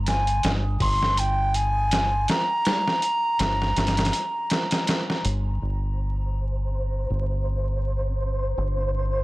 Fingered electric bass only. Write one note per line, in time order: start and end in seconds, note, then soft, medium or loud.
0.00 0.40 G1 medium
0.44 0.77 G1 loud
0.81 2.25 G1 loud
3.40 3.73 G1 loud
3.77 4.10 G1 loud
5.25 5.58 G1 loud
5.62 7.07 G1 medium
7.10 8.55 G1 medium
8.58 9.24 G1 medium